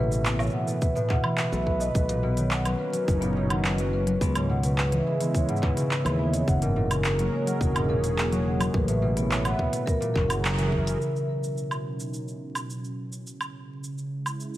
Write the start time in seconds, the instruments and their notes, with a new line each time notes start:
Already playing: fingered electric bass A1, analog synth pad A2 E3 C#4 G#4, harp B2
0.10 harp E3, marimba B4, cabasa
0.24 marimba B3, clap, cabasa
0.38 harp A3, marimba C#5, cabasa, low woodblock
0.43 cabasa
0.46 cabasa
0.50 harp B3, marimba F#5, cabasa
0.67 harp A3, marimba B4, cabasa
0.71 analog synth pad B4
0.82 marimba B4, kick, cabasa
0.95 harp A2, marimba B4, cabasa
1.09 harp B2, marimba F#5, kick, clap
1.24 harp E3, marimba B5, low woodblock
1.37 marimba B4, clap, cabasa
1.52 fingered electric bass B1, harp A3, marimba B4, cabasa
1.66 harp B3, marimba B4, kick
1.80 harp A3, marimba D#5, cabasa
1.94 fingered electric bass B1, marimba B4, kick, cabasa
2.08 harp A#2, marimba B4, closed hi-hat, cabasa
2.19 harp B2, analog synth pad F#3, marimba B3
2.37 harp D#3, marimba C#5, closed hi-hat, cabasa
2.50 analog synth pad C#4, marimba F#5, clap, cabasa
2.65 harp F#3, marimba B4, closed hi-hat, cabasa, low woodblock
2.79 harp A#3, marimba B4
2.86 analog synth pad D#4
2.93 harp F#3, marimba B4, closed hi-hat, cabasa
3.08 fingered electric bass F#1, marimba B4, kick, cabasa
3.21 harp A#2, marimba B3, closed hi-hat, cabasa
3.36 harp B2, marimba C#5
3.50 harp D#3, marimba F#5, closed hi-hat, low woodblock
3.64 marimba B4, clap, cabasa
3.78 harp F#3, marimba B4, closed hi-hat, cabasa
3.93 harp A#3, marimba B4
4.07 harp F#3, marimba B4, closed hi-hat
4.21 fingered electric bass C#2, analog synth pad C#3, marimba B3, kick, cabasa
4.35 harp G#2, marimba C#5, closed hi-hat, cabasa, low woodblock
4.50 harp B2, marimba F#5
4.63 harp C#3, marimba B4, closed hi-hat, cabasa
4.68 analog synth pad E4
4.76 analog synth pad G#3, marimba B4, clap, cabasa
4.92 harp E3, marimba B4, closed hi-hat
5.06 harp G#3, marimba B4
5.21 harp E3, marimba B3, closed hi-hat, cabasa
5.34 marimba C#5, kick, cabasa
5.49 harp G#2, marimba F#5, closed hi-hat
5.56 cabasa
5.63 harp B2, marimba B4, kick, clap
5.77 harp C#3, marimba B4, closed hi-hat, cabasa
5.91 clap, cabasa
6.05 fingered electric bass D#2, harp E3, marimba B4, closed hi-hat, cabasa, low woodblock
6.19 harp G#3, marimba B3
6.33 harp E3, marimba C#5, closed hi-hat, cabasa
6.47 fingered electric bass F#1, analog synth pad F#3, marimba F#5, kick, cabasa
6.62 harp G#2, marimba A#4, closed hi-hat, cabasa
6.69 analog synth pad G#4
6.76 harp A#2, marimba A#4, analog synth pad A#4
6.90 harp C#3, analog synth pad C#4, marimba A#4, closed hi-hat, cabasa, low woodblock
7.04 marimba A#4, clap, cabasa
7.18 harp F#3, marimba A#3, closed hi-hat, cabasa
7.32 harp G#3, marimba C#5
7.46 harp F#3, marimba F#5, closed hi-hat, cabasa
7.61 fingered electric bass E1, marimba A#4, kick, cabasa
7.75 harp G#2, marimba A#4, closed hi-hat, cabasa, low woodblock
7.89 harp A#2, marimba A#4
8.04 harp C#3, marimba A#4, closed hi-hat, cabasa
8.18 marimba A#3, clap, cabasa
8.31 harp F#3, marimba C#5, closed hi-hat, cabasa
8.45 harp G#3, marimba F#5
8.59 harp F#3, marimba A#4, closed hi-hat, cabasa, low woodblock
8.74 fingered electric bass A1, analog synth pad A2, marimba B4, kick
8.88 harp A2, marimba B4, closed hi-hat, cabasa
9.02 harp B2, analog synth pad E3, marimba B4
9.12 analog synth pad B3
9.16 harp E3, marimba B3, closed hi-hat, cabasa
9.26 analog synth pad B4
9.30 marimba C#5, clap, cabasa
9.44 harp A3, marimba F#5, closed hi-hat, cabasa, low woodblock
9.59 harp B3, marimba B4, kick
9.72 harp A3, marimba B4, closed hi-hat, cabasa
9.86 analog synth pad F#3, marimba A#4, kick, cabasa
10.00 harp A#2, marimba A#4, closed hi-hat, cabasa
10.08 analog synth pad C#4 G#4
10.14 fingered electric bass F#1, harp F#3, marimba A#4, kick, clap
10.28 harp C#3, marimba F#5, closed hi-hat, cabasa, low woodblock
10.40 analog synth pad A#4, marimba A#5
10.45 clap, cabasa
10.58 harp E3, marimba A#4, closed hi-hat, cabasa
10.72 harp E3, marimba E5, kick
10.86 harp E4, marimba A#4, closed hi-hat, cabasa
11.01 analog synth pad B2, cabasa
11.16 cabasa
11.44 cabasa
11.58 cabasa
11.69 analog synth pad D#4, cabasa, low woodblock
12.00 cabasa
12.14 cabasa
12.28 cabasa
12.55 cabasa, low woodblock
12.70 cabasa
12.84 cabasa
13.12 cabasa
13.26 analog synth pad C#3, cabasa
13.41 cabasa, low woodblock
13.84 cabasa
13.92 analog synth pad G#3
13.98 cabasa
14.20 analog synth pad E4
14.26 cabasa, low woodblock
14.40 cabasa
14.54 cabasa